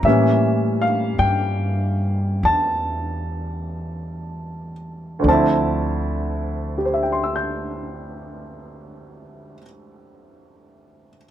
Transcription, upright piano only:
0, 0, Header, 1, 2, 480
1, 0, Start_track
1, 0, Key_signature, -1, "minor"
1, 0, Tempo, 1167315
1, 19, Time_signature, 4, 2, 24, 8
1, 499, Tempo, 1242236
1, 979, Tempo, 1336303
1, 1459, Tempo, 1459854
1, 1939, Tempo, 1526718
1, 3843, End_track
2, 0, Start_track
2, 0, Title_t, "Upright piano"
2, 0, Program_c, 0, 0
2, 0, Control_c, 0, 64, 127
2, 0, Note_on_c, 0, 82, 45
2, 20, Note_on_c, 0, 76, 64
2, 22, Note_on_c, 0, 52, 46
2, 24, Control_c, 0, 64, 0
2, 25, Note_on_c, 0, 55, 43
2, 26, Note_on_c, 0, 58, 41
2, 31, Note_on_c, 0, 61, 54
2, 72, Note_off_c, 0, 82, 0
2, 102, Control_c, 0, 64, 127
2, 335, Note_on_c, 0, 77, 65
2, 345, Note_off_c, 0, 76, 0
2, 490, Note_on_c, 0, 79, 71
2, 504, Note_off_c, 0, 77, 0
2, 977, Note_on_c, 0, 81, 68
2, 988, Note_off_c, 0, 79, 0
2, 1759, Note_off_c, 0, 81, 0
2, 1919, Note_on_c, 0, 38, 48
2, 1930, Note_on_c, 0, 50, 47
2, 1940, Note_off_c, 0, 52, 0
2, 1940, Note_on_c, 0, 53, 43
2, 1942, Note_off_c, 0, 55, 0
2, 1942, Note_off_c, 0, 58, 0
2, 1943, Control_c, 0, 64, 0
2, 1944, Note_off_c, 0, 61, 0
2, 1949, Note_on_c, 0, 60, 49
2, 1950, Note_on_c, 0, 81, 62
2, 1958, Note_on_c, 0, 64, 55
2, 1997, Control_c, 0, 64, 127
2, 2419, Note_on_c, 0, 67, 34
2, 2443, Note_on_c, 0, 72, 33
2, 2469, Note_on_c, 0, 76, 33
2, 2498, Note_on_c, 0, 79, 32
2, 2528, Note_on_c, 0, 84, 29
2, 2563, Note_on_c, 0, 88, 29
2, 2601, Note_on_c, 0, 91, 27
2, 3286, Note_off_c, 0, 38, 0
2, 3296, Note_off_c, 0, 50, 0
2, 3303, Note_off_c, 0, 81, 0
2, 3306, Note_off_c, 0, 53, 0
2, 3315, Note_off_c, 0, 60, 0
2, 3323, Note_off_c, 0, 64, 0
2, 3772, Note_off_c, 0, 67, 0
2, 3796, Note_off_c, 0, 72, 0
2, 3822, Note_off_c, 0, 76, 0
2, 3843, Note_off_c, 0, 79, 0
2, 3843, Note_off_c, 0, 84, 0
2, 3843, Note_off_c, 0, 88, 0
2, 3843, Note_off_c, 0, 91, 0
2, 3843, End_track
0, 0, End_of_file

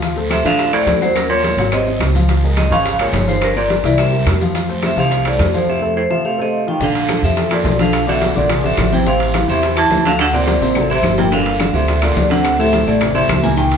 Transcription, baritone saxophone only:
0, 0, Header, 1, 2, 480
1, 0, Start_track
1, 0, Tempo, 282220
1, 46, Time_signature, 4, 2, 24, 8
1, 23423, End_track
2, 0, Start_track
2, 0, Title_t, "Baritone saxophone"
2, 0, Program_c, 0, 67
2, 529, Note_on_c, 0, 48, 87
2, 751, Note_off_c, 0, 48, 0
2, 767, Note_on_c, 0, 50, 93
2, 1215, Note_off_c, 0, 50, 0
2, 1244, Note_on_c, 0, 45, 88
2, 1694, Note_off_c, 0, 45, 0
2, 1717, Note_on_c, 0, 45, 67
2, 1947, Note_off_c, 0, 45, 0
2, 1961, Note_on_c, 0, 42, 77
2, 2182, Note_off_c, 0, 42, 0
2, 2192, Note_on_c, 0, 46, 81
2, 2648, Note_off_c, 0, 46, 0
2, 2680, Note_on_c, 0, 46, 71
2, 2909, Note_off_c, 0, 46, 0
2, 2917, Note_on_c, 0, 48, 72
2, 3371, Note_off_c, 0, 48, 0
2, 4381, Note_on_c, 0, 46, 79
2, 4601, Note_off_c, 0, 46, 0
2, 4615, Note_on_c, 0, 49, 87
2, 5062, Note_off_c, 0, 49, 0
2, 5102, Note_on_c, 0, 46, 82
2, 5546, Note_off_c, 0, 46, 0
2, 5581, Note_on_c, 0, 44, 71
2, 5802, Note_off_c, 0, 44, 0
2, 5816, Note_on_c, 0, 43, 80
2, 6040, Note_off_c, 0, 43, 0
2, 6062, Note_on_c, 0, 46, 85
2, 6506, Note_off_c, 0, 46, 0
2, 6545, Note_on_c, 0, 46, 71
2, 6765, Note_off_c, 0, 46, 0
2, 6800, Note_on_c, 0, 48, 72
2, 7236, Note_off_c, 0, 48, 0
2, 8246, Note_on_c, 0, 48, 82
2, 8456, Note_off_c, 0, 48, 0
2, 8484, Note_on_c, 0, 48, 95
2, 8919, Note_off_c, 0, 48, 0
2, 8956, Note_on_c, 0, 45, 84
2, 9395, Note_off_c, 0, 45, 0
2, 9436, Note_on_c, 0, 45, 66
2, 9651, Note_off_c, 0, 45, 0
2, 9669, Note_on_c, 0, 48, 89
2, 10111, Note_off_c, 0, 48, 0
2, 10137, Note_on_c, 0, 45, 70
2, 10245, Note_off_c, 0, 45, 0
2, 10391, Note_on_c, 0, 48, 74
2, 10609, Note_off_c, 0, 48, 0
2, 10632, Note_on_c, 0, 48, 76
2, 10849, Note_off_c, 0, 48, 0
2, 10903, Note_on_c, 0, 48, 70
2, 11329, Note_off_c, 0, 48, 0
2, 11379, Note_on_c, 0, 51, 70
2, 11584, Note_off_c, 0, 51, 0
2, 11607, Note_on_c, 0, 50, 84
2, 12263, Note_off_c, 0, 50, 0
2, 12314, Note_on_c, 0, 48, 75
2, 12753, Note_off_c, 0, 48, 0
2, 12782, Note_on_c, 0, 46, 75
2, 13226, Note_off_c, 0, 46, 0
2, 13264, Note_on_c, 0, 50, 78
2, 13707, Note_off_c, 0, 50, 0
2, 13744, Note_on_c, 0, 47, 81
2, 14187, Note_off_c, 0, 47, 0
2, 14233, Note_on_c, 0, 46, 75
2, 14672, Note_off_c, 0, 46, 0
2, 14715, Note_on_c, 0, 48, 75
2, 15152, Note_off_c, 0, 48, 0
2, 15191, Note_on_c, 0, 52, 72
2, 15407, Note_off_c, 0, 52, 0
2, 15423, Note_on_c, 0, 48, 81
2, 16089, Note_off_c, 0, 48, 0
2, 16136, Note_on_c, 0, 48, 87
2, 16582, Note_off_c, 0, 48, 0
2, 16625, Note_on_c, 0, 52, 82
2, 17066, Note_off_c, 0, 52, 0
2, 17103, Note_on_c, 0, 50, 76
2, 17209, Note_off_c, 0, 50, 0
2, 17347, Note_on_c, 0, 50, 87
2, 17452, Note_off_c, 0, 50, 0
2, 17576, Note_on_c, 0, 46, 79
2, 18467, Note_off_c, 0, 46, 0
2, 18542, Note_on_c, 0, 48, 81
2, 18984, Note_off_c, 0, 48, 0
2, 19008, Note_on_c, 0, 52, 73
2, 19224, Note_off_c, 0, 52, 0
2, 19234, Note_on_c, 0, 50, 82
2, 19912, Note_off_c, 0, 50, 0
2, 19961, Note_on_c, 0, 48, 81
2, 20412, Note_off_c, 0, 48, 0
2, 20449, Note_on_c, 0, 46, 82
2, 20896, Note_off_c, 0, 46, 0
2, 20905, Note_on_c, 0, 50, 83
2, 21363, Note_off_c, 0, 50, 0
2, 21414, Note_on_c, 0, 48, 84
2, 21858, Note_off_c, 0, 48, 0
2, 21888, Note_on_c, 0, 45, 84
2, 22334, Note_off_c, 0, 45, 0
2, 22357, Note_on_c, 0, 48, 86
2, 22808, Note_off_c, 0, 48, 0
2, 22833, Note_on_c, 0, 52, 83
2, 23063, Note_off_c, 0, 52, 0
2, 23071, Note_on_c, 0, 51, 89
2, 23423, Note_off_c, 0, 51, 0
2, 23423, End_track
0, 0, End_of_file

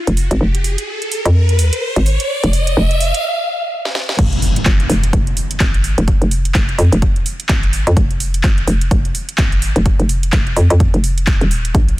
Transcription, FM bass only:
0, 0, Header, 1, 2, 480
1, 0, Start_track
1, 0, Key_signature, -4, "minor"
1, 0, Tempo, 472441
1, 414, Time_signature, 4, 2, 24, 8
1, 12187, End_track
2, 0, Start_track
2, 0, Title_t, "FM bass"
2, 0, Program_c, 0, 39
2, 75, Note_on_c, 0, 29, 94
2, 292, Note_off_c, 0, 29, 0
2, 315, Note_on_c, 0, 32, 98
2, 398, Note_off_c, 0, 32, 0
2, 414, Note_on_c, 0, 29, 98
2, 772, Note_off_c, 0, 29, 0
2, 1275, Note_on_c, 0, 41, 96
2, 1732, Note_off_c, 0, 41, 0
2, 1995, Note_on_c, 0, 32, 95
2, 2212, Note_off_c, 0, 32, 0
2, 2475, Note_on_c, 0, 29, 95
2, 2798, Note_off_c, 0, 29, 0
2, 2814, Note_on_c, 0, 29, 96
2, 3172, Note_off_c, 0, 29, 0
2, 4254, Note_on_c, 0, 29, 99
2, 4718, Note_off_c, 0, 29, 0
2, 4734, Note_on_c, 0, 31, 97
2, 4958, Note_off_c, 0, 31, 0
2, 4974, Note_on_c, 0, 29, 97
2, 5198, Note_off_c, 0, 29, 0
2, 5214, Note_on_c, 0, 29, 100
2, 5438, Note_off_c, 0, 29, 0
2, 5694, Note_on_c, 0, 32, 96
2, 6053, Note_off_c, 0, 32, 0
2, 6075, Note_on_c, 0, 29, 100
2, 6293, Note_off_c, 0, 29, 0
2, 6315, Note_on_c, 0, 29, 97
2, 6638, Note_off_c, 0, 29, 0
2, 6654, Note_on_c, 0, 29, 97
2, 6878, Note_off_c, 0, 29, 0
2, 6893, Note_on_c, 0, 41, 95
2, 7012, Note_off_c, 0, 41, 0
2, 7035, Note_on_c, 0, 29, 98
2, 7358, Note_off_c, 0, 29, 0
2, 7614, Note_on_c, 0, 32, 99
2, 7973, Note_off_c, 0, 32, 0
2, 7995, Note_on_c, 0, 41, 100
2, 8078, Note_off_c, 0, 41, 0
2, 8094, Note_on_c, 0, 29, 100
2, 8558, Note_off_c, 0, 29, 0
2, 8574, Note_on_c, 0, 31, 98
2, 8798, Note_off_c, 0, 31, 0
2, 8814, Note_on_c, 0, 29, 98
2, 9038, Note_off_c, 0, 29, 0
2, 9054, Note_on_c, 0, 29, 100
2, 9278, Note_off_c, 0, 29, 0
2, 9534, Note_on_c, 0, 32, 97
2, 9892, Note_off_c, 0, 32, 0
2, 9915, Note_on_c, 0, 29, 99
2, 10133, Note_off_c, 0, 29, 0
2, 10155, Note_on_c, 0, 29, 95
2, 10478, Note_off_c, 0, 29, 0
2, 10494, Note_on_c, 0, 29, 101
2, 10718, Note_off_c, 0, 29, 0
2, 10734, Note_on_c, 0, 41, 95
2, 10853, Note_off_c, 0, 41, 0
2, 10875, Note_on_c, 0, 41, 99
2, 11092, Note_off_c, 0, 41, 0
2, 11115, Note_on_c, 0, 29, 96
2, 11572, Note_off_c, 0, 29, 0
2, 11595, Note_on_c, 0, 27, 95
2, 11918, Note_off_c, 0, 27, 0
2, 11934, Note_on_c, 0, 34, 99
2, 12187, Note_off_c, 0, 34, 0
2, 12187, End_track
0, 0, End_of_file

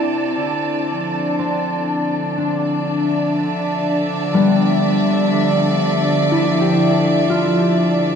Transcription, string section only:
0, 0, Header, 1, 2, 480
1, 0, Start_track
1, 0, Tempo, 983607
1, 204, Time_signature, 3, 2, 24, 8
1, 3979, End_track
2, 0, Start_track
2, 0, Title_t, "String section"
2, 0, Program_c, 0, 48
2, 0, Note_on_c, 0, 48, 72
2, 0, Note_on_c, 0, 60, 79
2, 0, Note_on_c, 0, 62, 63
2, 0, Note_on_c, 0, 69, 65
2, 0, Note_on_c, 0, 74, 71
2, 196, Note_on_c, 0, 50, 57
2, 201, Note_off_c, 0, 48, 0
2, 439, Note_on_c, 0, 53, 77
2, 1136, Note_off_c, 0, 69, 0
2, 1249, Note_off_c, 0, 74, 0
2, 1255, Note_on_c, 0, 74, 85
2, 1272, Note_off_c, 0, 60, 0
2, 1441, Note_on_c, 0, 76, 69
2, 3979, Note_off_c, 0, 50, 0
2, 3979, Note_off_c, 0, 53, 0
2, 3979, Note_off_c, 0, 62, 0
2, 3979, Note_off_c, 0, 74, 0
2, 3979, Note_off_c, 0, 76, 0
2, 3979, End_track
0, 0, End_of_file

